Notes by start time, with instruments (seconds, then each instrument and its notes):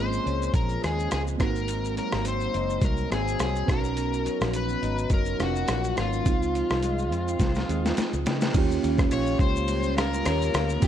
Already playing: fingered electric bass G#1, clean electric guitar A#2 F3 G#3, synth keys C4 C#4 F4 G#4
0.00 electric slide guitar C5
0.13 shaker
0.26 fingered electric bass C#2, clean electric guitar C#4, closed hi-hat, shaker
0.42 shaker
0.54 fingered electric bass A#1, clean electric guitar F3, electric slide guitar A#4, kick, closed hi-hat, shaker
0.69 shaker
0.83 fingered electric bass D#2, clean electric guitar G#3, electric slide guitar G#4, cross-stick, closed hi-hat, shaker
1.00 shaker
1.11 fingered electric bass C#2, clean electric guitar F3, electric slide guitar G#4, cross-stick, closed hi-hat, shaker
1.27 shaker
1.38 fingered electric bass G#1, clean electric guitar G#2, synth keys A#3 C4 D#4, electric slide guitar A#4, kick, cross-stick, closed hi-hat, shaker
1.43 synth keys F#4
1.55 shaker
1.68 clean electric guitar G#2, closed hi-hat, shaker
1.85 shaker
1.96 clean electric guitar F#3, electric slide guitar A#4, closed hi-hat, shaker
2.12 fingered electric bass G#1, cross-stick, shaker
2.25 clean electric guitar C4, electric slide guitar C5, closed hi-hat, shaker
2.40 shaker
2.54 fingered electric bass F#1, clean electric guitar D#4, closed hi-hat, shaker
2.70 shaker
2.82 fingered electric bass C2, clean electric guitar F#3, electric slide guitar A#4, kick, closed hi-hat, shaker
2.97 shaker
3.11 fingered electric bass G#1, clean electric guitar C4, electric slide guitar G#4, cross-stick, closed hi-hat, shaker
3.28 shaker
3.39 fingered electric bass C2, clean electric guitar F#3, electric slide guitar G#4, cross-stick, closed hi-hat, shaker
3.56 shaker
3.66 fingered electric bass B1, clean electric guitar B2, synth keys B3 C#4 D#4, electric slide guitar A#4, kick, cross-stick, closed hi-hat, shaker
3.71 synth keys F#4
3.84 shaker
3.96 clean electric guitar B2, closed hi-hat, shaker
4.14 shaker
4.25 clean electric guitar F#3, closed hi-hat, shaker
4.41 fingered electric bass A#1, cross-stick, shaker
4.53 electric slide guitar B4, closed hi-hat, shaker
4.69 shaker
4.82 fingered electric bass G#1, clean electric guitar D#4, closed hi-hat, shaker
4.98 shaker
5.10 fingered electric bass F#1, clean electric guitar F#3, electric slide guitar A#4, kick, closed hi-hat, shaker
5.25 shaker
5.39 fingered electric bass F1, synth keys A#3 C#4 D#4 F4, clean electric guitar A#3, electric slide guitar F#4, cross-stick, closed hi-hat, shaker
5.47 synth keys F#4
5.56 shaker
5.68 fingered electric bass A#1, clean electric guitar F#3, cross-stick, closed hi-hat, shaker
5.84 shaker
5.97 fingered electric bass G#1, clean electric guitar A#3, electric slide guitar F4, cross-stick, closed hi-hat, shaker
6.13 shaker
6.24 fingered electric bass C#2, synth keys G#3 C4 D#4, kick, closed hi-hat, shaker
6.29 synth keys F4
6.42 shaker
6.54 clean electric guitar F3, closed hi-hat, shaker
6.70 fingered electric bass C2, cross-stick, shaker
6.83 clean electric guitar G#3, closed hi-hat, shaker
6.98 shaker
7.11 fingered electric bass F2, clean electric guitar C4, closed hi-hat, shaker
7.28 shaker
7.40 fingered electric bass C2, clean electric guitar F3, kick, snare, closed hi-hat, shaker
7.55 snare, shaker
7.68 fingered electric bass D#2, synth keys G#3 C4 D#4 F4, clean electric guitar G#3, closed hi-hat, shaker
7.86 snare, shaker
7.97 clean electric guitar F3, muted fingered electric bass stroke, snare, closed hi-hat, shaker
8.13 fingered electric bass C#2, shaker
8.26 fingered electric bass C#3, clean electric guitar G#3, snare, closed hi-hat, shaker
8.41 snare, shaker
8.53 fingered electric bass D#2, clean electric guitar D#3, synth keys A#3 C#4 F4, kick, crash, ride, shaker
8.58 synth keys G4
8.71 shaker
8.83 fingered electric bass D#2, clean electric guitar C#4, ride, shaker
8.98 kick, cross-stick, shaker
9.11 fingered electric bass A#1, clean electric guitar F4, electric slide guitar C#5, ride, shaker
9.27 shaker
9.39 fingered electric bass C#2, clean electric guitar C#4, electric slide guitar C5, kick, ride, shaker
9.56 shaker
9.68 clean electric guitar G3, ride, shaker
9.83 shaker
9.96 clean electric guitar F4, electric slide guitar A#4, cross-stick, ride, shaker
10.14 shaker
10.25 fingered electric bass D#2, clean electric guitar C#4, cross-stick, ride, shaker
10.42 shaker
10.54 fingered electric bass D2, clean electric guitar F4, cross-stick, ride, shaker
10.69 shaker
10.80 fingered electric bass D#2, clean electric guitar D#3, synth keys A#3 C#4 F4, kick, ride, shaker
10.84 electric slide guitar G4